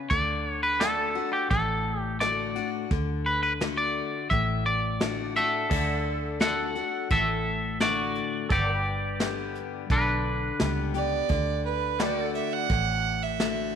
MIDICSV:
0, 0, Header, 1, 7, 480
1, 0, Start_track
1, 0, Key_signature, 2, "major"
1, 0, Tempo, 700117
1, 73, Time_signature, 4, 2, 24, 8
1, 9429, End_track
2, 0, Start_track
2, 0, Title_t, "Fiddle"
2, 0, Program_c, 0, 110
2, 7509, Note_on_c, 0, 74, 88
2, 7976, Note_off_c, 0, 74, 0
2, 7989, Note_on_c, 0, 71, 74
2, 8229, Note_on_c, 0, 74, 82
2, 8240, Note_off_c, 0, 71, 0
2, 8461, Note_off_c, 0, 74, 0
2, 8465, Note_on_c, 0, 76, 77
2, 8590, Note_on_c, 0, 78, 96
2, 8600, Note_off_c, 0, 76, 0
2, 9070, Note_on_c, 0, 76, 80
2, 9080, Note_off_c, 0, 78, 0
2, 9429, Note_off_c, 0, 76, 0
2, 9429, End_track
3, 0, Start_track
3, 0, Title_t, "Pedal steel guitar"
3, 0, Program_c, 1, 26
3, 553, Note_on_c, 1, 69, 72
3, 556, Note_on_c, 1, 74, 68
3, 565, Note_on_c, 1, 78, 67
3, 3887, Note_off_c, 1, 69, 0
3, 3889, Note_off_c, 1, 74, 0
3, 3894, Note_off_c, 1, 78, 0
3, 3907, Note_on_c, 1, 69, 64
3, 3915, Note_on_c, 1, 74, 67
3, 3922, Note_on_c, 1, 78, 69
3, 5810, Note_off_c, 1, 69, 0
3, 5814, Note_off_c, 1, 74, 0
3, 5818, Note_off_c, 1, 78, 0
3, 5824, Note_on_c, 1, 69, 64
3, 5833, Note_on_c, 1, 74, 69
3, 5841, Note_on_c, 1, 78, 62
3, 5978, Note_off_c, 1, 78, 0
3, 5978, Note_on_c, 1, 79, 62
3, 5995, Note_off_c, 1, 69, 0
3, 5995, Note_on_c, 1, 71, 64
3, 7727, Note_off_c, 1, 71, 0
3, 7732, Note_off_c, 1, 74, 0
3, 7736, Note_off_c, 1, 79, 0
3, 8229, Note_on_c, 1, 71, 73
3, 8236, Note_on_c, 1, 74, 73
3, 8240, Note_on_c, 1, 79, 69
3, 8377, Note_off_c, 1, 79, 0
3, 8377, Note_on_c, 1, 78, 69
3, 8400, Note_off_c, 1, 71, 0
3, 8400, Note_on_c, 1, 69, 73
3, 9429, Note_off_c, 1, 69, 0
3, 9429, Note_off_c, 1, 74, 0
3, 9429, Note_off_c, 1, 78, 0
3, 9429, End_track
4, 0, Start_track
4, 0, Title_t, "Clean electric guitar"
4, 0, Program_c, 2, 27
4, 68, Note_on_c, 2, 74, 88
4, 342, Note_off_c, 2, 74, 0
4, 342, Note_on_c, 2, 73, 88
4, 429, Note_off_c, 2, 73, 0
4, 432, Note_on_c, 2, 71, 78
4, 549, Note_on_c, 2, 69, 80
4, 556, Note_off_c, 2, 71, 0
4, 887, Note_off_c, 2, 69, 0
4, 911, Note_on_c, 2, 67, 72
4, 1029, Note_off_c, 2, 67, 0
4, 1032, Note_on_c, 2, 69, 81
4, 1374, Note_off_c, 2, 69, 0
4, 1374, Note_on_c, 2, 67, 81
4, 1486, Note_off_c, 2, 67, 0
4, 1511, Note_on_c, 2, 74, 73
4, 1848, Note_off_c, 2, 74, 0
4, 2236, Note_on_c, 2, 71, 66
4, 2342, Note_off_c, 2, 71, 0
4, 2350, Note_on_c, 2, 71, 66
4, 2416, Note_off_c, 2, 71, 0
4, 2588, Note_on_c, 2, 74, 88
4, 2945, Note_off_c, 2, 74, 0
4, 2948, Note_on_c, 2, 76, 85
4, 3192, Note_off_c, 2, 76, 0
4, 3194, Note_on_c, 2, 74, 74
4, 3647, Note_off_c, 2, 74, 0
4, 3678, Note_on_c, 2, 76, 89
4, 3685, Note_on_c, 2, 69, 74
4, 4372, Note_off_c, 2, 69, 0
4, 4393, Note_off_c, 2, 76, 0
4, 4395, Note_on_c, 2, 78, 98
4, 4402, Note_on_c, 2, 69, 80
4, 4850, Note_off_c, 2, 69, 0
4, 4874, Note_off_c, 2, 78, 0
4, 4877, Note_on_c, 2, 76, 93
4, 4882, Note_on_c, 2, 69, 68
4, 5330, Note_off_c, 2, 69, 0
4, 5354, Note_off_c, 2, 76, 0
4, 5356, Note_on_c, 2, 74, 85
4, 5361, Note_on_c, 2, 66, 64
4, 5809, Note_off_c, 2, 66, 0
4, 5830, Note_off_c, 2, 74, 0
4, 5840, Note_on_c, 2, 67, 61
4, 5840, Note_on_c, 2, 74, 76
4, 6768, Note_off_c, 2, 67, 0
4, 6798, Note_on_c, 2, 62, 61
4, 6799, Note_off_c, 2, 74, 0
4, 6802, Note_on_c, 2, 71, 64
4, 7487, Note_off_c, 2, 62, 0
4, 7488, Note_off_c, 2, 71, 0
4, 9429, End_track
5, 0, Start_track
5, 0, Title_t, "Steel-string acoustic guitar"
5, 0, Program_c, 3, 25
5, 76, Note_on_c, 3, 50, 78
5, 545, Note_off_c, 3, 50, 0
5, 554, Note_on_c, 3, 50, 53
5, 561, Note_on_c, 3, 57, 54
5, 564, Note_on_c, 3, 62, 57
5, 568, Note_on_c, 3, 66, 56
5, 782, Note_off_c, 3, 66, 0
5, 784, Note_off_c, 3, 50, 0
5, 788, Note_off_c, 3, 57, 0
5, 789, Note_off_c, 3, 62, 0
5, 790, Note_on_c, 3, 66, 59
5, 807, Note_on_c, 3, 62, 47
5, 1023, Note_off_c, 3, 66, 0
5, 1031, Note_off_c, 3, 62, 0
5, 1037, Note_on_c, 3, 45, 83
5, 1512, Note_on_c, 3, 50, 54
5, 1517, Note_on_c, 3, 57, 51
5, 1524, Note_on_c, 3, 62, 61
5, 1528, Note_on_c, 3, 66, 54
5, 1744, Note_off_c, 3, 50, 0
5, 1744, Note_off_c, 3, 66, 0
5, 1746, Note_off_c, 3, 57, 0
5, 1750, Note_off_c, 3, 62, 0
5, 1753, Note_on_c, 3, 66, 57
5, 1769, Note_on_c, 3, 62, 45
5, 1948, Note_off_c, 3, 45, 0
5, 1984, Note_off_c, 3, 66, 0
5, 1992, Note_off_c, 3, 62, 0
5, 1995, Note_on_c, 3, 50, 87
5, 2463, Note_off_c, 3, 50, 0
5, 2472, Note_on_c, 3, 50, 51
5, 2477, Note_on_c, 3, 57, 52
5, 2483, Note_on_c, 3, 62, 59
5, 2486, Note_on_c, 3, 66, 62
5, 2929, Note_off_c, 3, 50, 0
5, 2932, Note_off_c, 3, 57, 0
5, 2935, Note_off_c, 3, 62, 0
5, 2937, Note_off_c, 3, 66, 0
5, 2956, Note_on_c, 3, 45, 73
5, 3429, Note_on_c, 3, 50, 50
5, 3437, Note_on_c, 3, 57, 54
5, 3440, Note_on_c, 3, 62, 55
5, 3445, Note_on_c, 3, 66, 57
5, 3662, Note_off_c, 3, 50, 0
5, 3666, Note_off_c, 3, 57, 0
5, 3666, Note_off_c, 3, 66, 0
5, 3668, Note_off_c, 3, 62, 0
5, 3674, Note_on_c, 3, 66, 54
5, 3690, Note_on_c, 3, 62, 42
5, 3867, Note_off_c, 3, 45, 0
5, 3905, Note_off_c, 3, 66, 0
5, 3913, Note_off_c, 3, 62, 0
5, 3913, Note_on_c, 3, 50, 89
5, 4378, Note_off_c, 3, 50, 0
5, 4386, Note_on_c, 3, 50, 58
5, 4394, Note_on_c, 3, 57, 49
5, 4396, Note_on_c, 3, 62, 63
5, 4401, Note_on_c, 3, 66, 64
5, 4621, Note_off_c, 3, 50, 0
5, 4622, Note_off_c, 3, 66, 0
5, 4625, Note_off_c, 3, 57, 0
5, 4626, Note_off_c, 3, 62, 0
5, 4630, Note_on_c, 3, 66, 55
5, 4647, Note_on_c, 3, 62, 44
5, 4863, Note_off_c, 3, 66, 0
5, 4871, Note_off_c, 3, 62, 0
5, 4872, Note_on_c, 3, 45, 88
5, 5349, Note_on_c, 3, 50, 53
5, 5353, Note_on_c, 3, 57, 54
5, 5356, Note_on_c, 3, 62, 54
5, 5363, Note_on_c, 3, 66, 58
5, 5784, Note_off_c, 3, 45, 0
5, 5807, Note_off_c, 3, 50, 0
5, 5809, Note_off_c, 3, 57, 0
5, 5811, Note_off_c, 3, 62, 0
5, 5814, Note_off_c, 3, 66, 0
5, 5835, Note_on_c, 3, 43, 88
5, 6306, Note_on_c, 3, 50, 59
5, 6313, Note_on_c, 3, 55, 58
5, 6320, Note_on_c, 3, 59, 61
5, 6322, Note_on_c, 3, 67, 56
5, 6745, Note_off_c, 3, 43, 0
5, 6765, Note_off_c, 3, 50, 0
5, 6769, Note_off_c, 3, 55, 0
5, 6772, Note_off_c, 3, 59, 0
5, 6773, Note_off_c, 3, 67, 0
5, 6791, Note_on_c, 3, 50, 80
5, 7267, Note_on_c, 3, 55, 58
5, 7273, Note_on_c, 3, 59, 54
5, 7275, Note_on_c, 3, 67, 61
5, 7493, Note_off_c, 3, 67, 0
5, 7499, Note_off_c, 3, 55, 0
5, 7502, Note_on_c, 3, 67, 63
5, 7503, Note_off_c, 3, 59, 0
5, 7517, Note_on_c, 3, 59, 47
5, 7703, Note_off_c, 3, 50, 0
5, 7737, Note_off_c, 3, 67, 0
5, 7740, Note_on_c, 3, 50, 83
5, 7745, Note_off_c, 3, 59, 0
5, 8214, Note_off_c, 3, 50, 0
5, 8222, Note_on_c, 3, 50, 55
5, 8226, Note_on_c, 3, 57, 51
5, 8230, Note_on_c, 3, 62, 51
5, 8234, Note_on_c, 3, 66, 64
5, 8682, Note_off_c, 3, 50, 0
5, 8684, Note_off_c, 3, 57, 0
5, 8686, Note_off_c, 3, 62, 0
5, 8688, Note_off_c, 3, 66, 0
5, 8705, Note_on_c, 3, 45, 84
5, 9185, Note_on_c, 3, 50, 53
5, 9190, Note_on_c, 3, 57, 53
5, 9196, Note_on_c, 3, 62, 61
5, 9199, Note_on_c, 3, 66, 66
5, 9429, Note_off_c, 3, 45, 0
5, 9429, Note_off_c, 3, 50, 0
5, 9429, Note_off_c, 3, 57, 0
5, 9429, Note_off_c, 3, 62, 0
5, 9429, Note_off_c, 3, 66, 0
5, 9429, End_track
6, 0, Start_track
6, 0, Title_t, "Fingered electric bass"
6, 0, Program_c, 4, 33
6, 73, Note_on_c, 4, 38, 80
6, 824, Note_off_c, 4, 38, 0
6, 1034, Note_on_c, 4, 33, 76
6, 1784, Note_off_c, 4, 33, 0
6, 1995, Note_on_c, 4, 38, 85
6, 2745, Note_off_c, 4, 38, 0
6, 2954, Note_on_c, 4, 33, 77
6, 3704, Note_off_c, 4, 33, 0
6, 3914, Note_on_c, 4, 38, 89
6, 4663, Note_off_c, 4, 38, 0
6, 4874, Note_on_c, 4, 33, 81
6, 5623, Note_off_c, 4, 33, 0
6, 5831, Note_on_c, 4, 31, 86
6, 6581, Note_off_c, 4, 31, 0
6, 6789, Note_on_c, 4, 35, 83
6, 7198, Note_off_c, 4, 35, 0
6, 7271, Note_on_c, 4, 37, 78
6, 7679, Note_off_c, 4, 37, 0
6, 7746, Note_on_c, 4, 38, 87
6, 8497, Note_off_c, 4, 38, 0
6, 8706, Note_on_c, 4, 33, 81
6, 9429, Note_off_c, 4, 33, 0
6, 9429, End_track
7, 0, Start_track
7, 0, Title_t, "Drums"
7, 73, Note_on_c, 9, 42, 55
7, 74, Note_on_c, 9, 36, 107
7, 142, Note_off_c, 9, 36, 0
7, 142, Note_off_c, 9, 42, 0
7, 554, Note_on_c, 9, 38, 97
7, 554, Note_on_c, 9, 42, 58
7, 622, Note_off_c, 9, 38, 0
7, 622, Note_off_c, 9, 42, 0
7, 1034, Note_on_c, 9, 36, 100
7, 1034, Note_on_c, 9, 42, 59
7, 1102, Note_off_c, 9, 36, 0
7, 1103, Note_off_c, 9, 42, 0
7, 1515, Note_on_c, 9, 38, 90
7, 1515, Note_on_c, 9, 42, 57
7, 1583, Note_off_c, 9, 38, 0
7, 1583, Note_off_c, 9, 42, 0
7, 1754, Note_on_c, 9, 42, 55
7, 1823, Note_off_c, 9, 42, 0
7, 1995, Note_on_c, 9, 36, 107
7, 1995, Note_on_c, 9, 42, 59
7, 2063, Note_off_c, 9, 36, 0
7, 2063, Note_off_c, 9, 42, 0
7, 2476, Note_on_c, 9, 38, 106
7, 2476, Note_on_c, 9, 42, 54
7, 2545, Note_off_c, 9, 38, 0
7, 2545, Note_off_c, 9, 42, 0
7, 2954, Note_on_c, 9, 42, 53
7, 2955, Note_on_c, 9, 36, 93
7, 3023, Note_off_c, 9, 42, 0
7, 3024, Note_off_c, 9, 36, 0
7, 3433, Note_on_c, 9, 38, 108
7, 3433, Note_on_c, 9, 42, 50
7, 3502, Note_off_c, 9, 38, 0
7, 3502, Note_off_c, 9, 42, 0
7, 3675, Note_on_c, 9, 42, 55
7, 3743, Note_off_c, 9, 42, 0
7, 3914, Note_on_c, 9, 49, 97
7, 3915, Note_on_c, 9, 36, 113
7, 3983, Note_off_c, 9, 36, 0
7, 3983, Note_off_c, 9, 49, 0
7, 4393, Note_on_c, 9, 38, 99
7, 4393, Note_on_c, 9, 42, 66
7, 4461, Note_off_c, 9, 38, 0
7, 4461, Note_off_c, 9, 42, 0
7, 4634, Note_on_c, 9, 42, 60
7, 4702, Note_off_c, 9, 42, 0
7, 4872, Note_on_c, 9, 36, 104
7, 4872, Note_on_c, 9, 42, 61
7, 4940, Note_off_c, 9, 42, 0
7, 4941, Note_off_c, 9, 36, 0
7, 5351, Note_on_c, 9, 38, 103
7, 5351, Note_on_c, 9, 42, 62
7, 5420, Note_off_c, 9, 38, 0
7, 5420, Note_off_c, 9, 42, 0
7, 5590, Note_on_c, 9, 42, 60
7, 5659, Note_off_c, 9, 42, 0
7, 5829, Note_on_c, 9, 42, 65
7, 5831, Note_on_c, 9, 36, 109
7, 5898, Note_off_c, 9, 42, 0
7, 5899, Note_off_c, 9, 36, 0
7, 6308, Note_on_c, 9, 38, 103
7, 6308, Note_on_c, 9, 42, 55
7, 6377, Note_off_c, 9, 38, 0
7, 6377, Note_off_c, 9, 42, 0
7, 6549, Note_on_c, 9, 42, 57
7, 6617, Note_off_c, 9, 42, 0
7, 6786, Note_on_c, 9, 42, 51
7, 6788, Note_on_c, 9, 36, 94
7, 6855, Note_off_c, 9, 42, 0
7, 6856, Note_off_c, 9, 36, 0
7, 7265, Note_on_c, 9, 38, 108
7, 7265, Note_on_c, 9, 42, 53
7, 7334, Note_off_c, 9, 38, 0
7, 7334, Note_off_c, 9, 42, 0
7, 7507, Note_on_c, 9, 42, 63
7, 7576, Note_off_c, 9, 42, 0
7, 7745, Note_on_c, 9, 42, 61
7, 7747, Note_on_c, 9, 36, 110
7, 7814, Note_off_c, 9, 42, 0
7, 7815, Note_off_c, 9, 36, 0
7, 8224, Note_on_c, 9, 38, 116
7, 8224, Note_on_c, 9, 42, 63
7, 8293, Note_off_c, 9, 38, 0
7, 8293, Note_off_c, 9, 42, 0
7, 8466, Note_on_c, 9, 42, 57
7, 8534, Note_off_c, 9, 42, 0
7, 8704, Note_on_c, 9, 42, 64
7, 8707, Note_on_c, 9, 36, 102
7, 8773, Note_off_c, 9, 42, 0
7, 8775, Note_off_c, 9, 36, 0
7, 9186, Note_on_c, 9, 38, 102
7, 9186, Note_on_c, 9, 42, 60
7, 9254, Note_off_c, 9, 38, 0
7, 9254, Note_off_c, 9, 42, 0
7, 9429, End_track
0, 0, End_of_file